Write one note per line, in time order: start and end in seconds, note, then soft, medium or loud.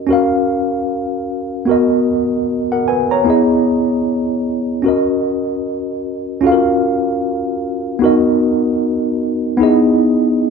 0.00 0.07 C#4 medium
0.00 0.09 F#4 medium
0.00 0.11 A#4 medium
0.00 0.11 D#5 medium
0.07 1.63 C#4 medium
0.07 1.65 F#4 medium
0.11 1.65 A#4 medium
0.11 1.67 F5 medium
1.65 3.22 B3 medium
1.65 3.23 F#4 medium
1.65 2.07 A#4 medium
1.71 2.09 D#5 medium
2.72 2.87 A#4 medium
2.72 2.86 F#5 medium
2.88 3.11 B4 medium
2.88 3.10 G#5 medium
3.11 3.49 C#5 medium
3.11 3.49 A#5 medium
3.24 4.81 B3 medium
3.24 4.82 E4 medium
3.24 4.83 G#4 medium
3.30 4.84 D#5 medium
4.82 6.39 C#4 medium
4.82 6.40 F#4 medium
4.82 6.41 A#4 medium
4.88 6.42 D#5 medium
6.41 7.97 C#4 medium
6.41 7.98 F4 medium
6.41 7.99 F#4 medium
6.45 6.52 A4 medium
6.45 8.01 F5 medium
6.52 8.02 A#4 medium
7.99 9.56 B3 medium
7.99 9.56 D#4 medium
7.99 9.57 F#4 medium
8.04 9.58 A#4 medium
8.04 9.59 D#5 medium
9.57 10.50 B3 medium
9.57 10.50 D#4 medium
9.57 10.50 E4 medium
9.61 10.50 G#4 medium
9.61 10.50 D#5 medium